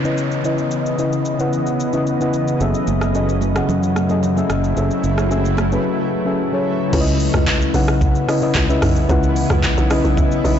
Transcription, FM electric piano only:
Already playing: C#3 C#4 E4 B4 C#5 D#5
0.04 C#3 C#4 E4 B4 D#5
0.44 C#3 C#4 E4 B4 D#5
0.98 C#3 C#4 E4 B4 D#5
1.39 C#3 C#4 E4 B4 F#5
1.93 C#3 C#4 E4 B4 D#5
2.20 C#3 C#4 E4 B4 F#5
2.60 F#3 C#4 G#4 A4 E5
3.14 F#3 C#4 G#4 A4 D#5
3.55 F#3 C#4 G#4 A4 F#5
4.09 F#3 C#4 G#4 A4 D#5
4.36 F#3 C#4 G#4 A4 E5
4.76 F#3 C#4 G#4 A4 E5
5.30 F#3 C#4 G#4 A4 E5
5.71 F#3 C#4 G#4 A4 B4
6.25 F#3 C#4 G#4 A4 E5
6.52 F#3 C#4 G#4 A4 C#5
6.92 C#3 C#4 E4 B4 C#5
7.01 D#5
7.74 C#3 C#4 E4 B4 F#5
8.27 C#3 C#4 E4 B4 D#5
8.41 C#3 C#4 E4 B4 D#5
8.68 C#3 C#4 E4 B4 E5
9.09 C#3 C#4 E4 B4 F#5
9.90 C#3 C#4 E4 B4 D#5
10.18 E5
10.44 C#3 C#4 E4 B4 D#5

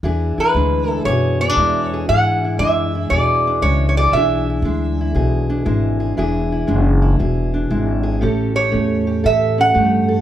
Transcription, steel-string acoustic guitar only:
0.04 E3 D4 E4 G#4
0.38 E4
0.55 G#3 D4
0.88 E4
1.07 B2 G#4
1.42 B3
1.49 D4
1.57 G#3 E4
1.93 G#4
2.09 E3 D4 E4 G#4
2.45 E4
2.60 G#3 D4
2.95 E4
3.12 B2 G#4
3.47 D4
3.63 G#3 E4
3.99 G#4
4.15 E3 D4 E4 G#4
4.50 E4
4.65 G#3 D4
5.01 E4
5.15 B2 G#4
5.50 D4
5.65 G#3 E4
6.00 G#4
6.17 E3 D4 E4 G#4
6.52 E4
6.67 G#3 D4
7.02 E4
7.19 B2 G#4
7.54 D4
7.71 G#3 E4
8.03 G#4
8.21 A2 C#4 G4 A4
8.55 G4
8.71 A3 C#4
9.07 G4
9.23 E3 A4
9.58 C#4
9.74 A3 G4
10.08 A4

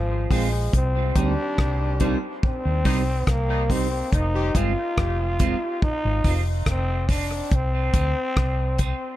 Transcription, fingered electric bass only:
Already playing: G#1
0.31 A#1
0.74 C2
1.16 D2
1.59 C2
2.65 D#2
2.86 C2
3.28 C2
4.13 F1
4.55 G1
4.98 F1
6.05 G#1
6.25 F1
6.67 F1
7.52 C2
7.94 D2
8.37 C2

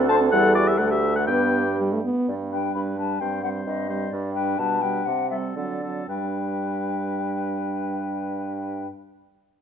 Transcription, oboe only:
0.09 A5
0.32 F#5
0.55 D5
0.67 E5
0.78 F#5
0.91 E5
1.16 F#5
1.27 G5
2.52 B4
2.99 B4
3.21 C5
3.44 C5
3.89 C5
4.36 B4
4.59 B4
4.83 B4
5.31 A4
5.56 A4
5.83 A4
6.09 B4

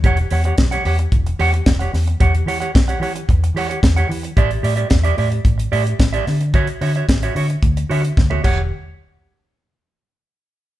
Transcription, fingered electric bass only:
0.04 E1
0.31 E2
0.58 B1
0.85 E2
1.12 E1
1.40 E2
1.66 E1
1.94 E2
2.21 E2
2.46 E3
2.75 B1
3.00 E3
3.29 E2
3.55 E3
3.83 E2
4.09 E3
4.37 A1
4.63 A2
4.91 E2
5.18 A2
5.45 A1
5.72 A2
6.00 A1
6.27 D3
6.81 D3
7.09 A1
7.35 D3
7.63 D2
7.90 D3
8.17 D2
8.44 E1

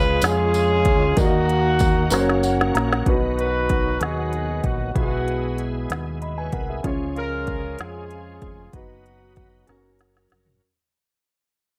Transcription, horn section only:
Already playing: F4 G#4 B4
0.24 C#4 F4 G#4
1.18 A#3 D#4 F#4
3.38 D#4 F#4 B4
4.00 B3 D#4 G#4
4.64 F#4
4.97 B3 F#4
7.16 C#4 F4 A#4
7.80 C#4 F4 G#4
8.74 B3 D#4 F#4

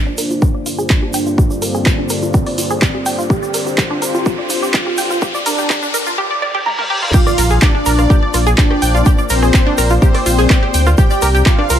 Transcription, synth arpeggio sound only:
0.07 D4
0.18 A#4
0.31 F4
0.42 G4
0.55 D5
0.66 F4
0.79 G#4
0.90 G4
1.03 G4
1.14 G5
1.27 F4
1.38 G4
1.51 D5
1.62 A#4
1.75 G#4
1.86 G4
1.99 D4
2.10 A#4
2.23 F4
2.34 G4
2.47 D5
2.58 F4
2.71 G#4
2.82 G4
2.95 G4
3.06 G5
3.19 F4
3.30 G4
3.43 D5
3.54 A#4
3.66 G4
3.78 G4
3.91 D4
4.02 A#4
4.15 F4
4.26 G4
4.39 D5
4.50 F4
4.63 G4
4.74 G4
4.87 G4
4.98 G5
5.11 F4
5.22 G4
5.35 D5
5.46 A#4
5.59 G4
5.70 G4
5.83 D4
5.94 A#4
6.07 F4
6.18 G4
6.31 D5
6.42 D5
6.55 G4
6.66 A#5
6.79 A#4
6.90 G4
7.03 F4
7.14 G4 G5
7.27 D5 D6
7.38 A#4 A#5
7.51 G#4 G#5
7.62 G4 G5
7.75 D4 D5
7.86 A#4 A#5
7.99 F4 F5
8.10 G4 G5
8.23 D5 D6
8.34 F4 F5
8.47 G#4 G#5
8.58 G4 G5
8.71 G4 G5
8.82 G5 G6
8.95 F4 F5
9.06 G4 G5
9.19 D5 D6
9.30 A#4 A#5
9.43 G#4 G#5
9.54 G4 G5
9.67 D4 D5
9.78 A#4 A#5
9.90 F4 F5
10.02 G4 G5
10.15 D5 D6
10.26 F4 F5
10.39 G#4 G#5
10.50 G4 G5
10.63 G4 G5
10.74 G5 G6
10.87 F4 F5
10.98 G4 G5
11.11 D5 D6
11.22 A#4 A#5
11.35 G4 G5
11.46 G4 G5
11.59 D4 D5
11.70 A#4 A#5

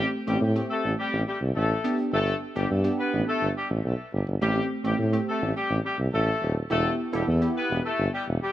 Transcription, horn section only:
0.27 G3 G4
0.70 A3 A4
0.98 G3 G4
1.27 G3 G4
1.55 A3 A4
2.13 A3 A4
2.56 G3 G4
2.98 B3 B4
3.27 A3 A4
3.56 G3 G4
4.42 G3 G4
4.84 G3 G4
5.27 A3 A4
5.56 G3 G4
5.84 G3 G4
6.13 A3 A4
6.70 A3 A4
7.13 G3 G4
7.56 B3 B4
7.84 A3 A4
8.13 G3 G4
8.42 G3 G4

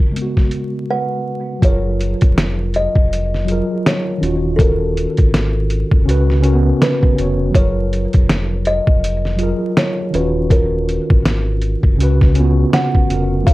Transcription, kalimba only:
Already playing: A#4
0.90 B4 F#5
1.65 C#5
2.76 D#5
3.87 C#5
4.56 A4
4.61 A#4
6.83 B4
7.55 C#5
8.67 D#5
9.78 C#5
10.15 B4
10.52 A#4
12.74 F#5
13.47 F5

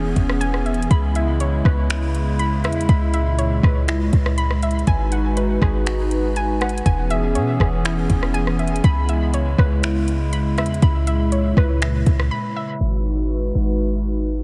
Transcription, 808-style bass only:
Already playing: E1
0.16 E1
0.91 C#2
1.65 C#2
2.64 E2
2.89 C#2
3.63 C#2
4.13 C#2
4.87 G#1
5.62 G#1
6.86 E1
7.35 B2
7.60 E1
8.10 E1
8.84 C#2
9.58 C#2
10.58 E2
10.82 C#2
11.57 C#2
12.07 C#2
12.81 G#1
13.55 G#1

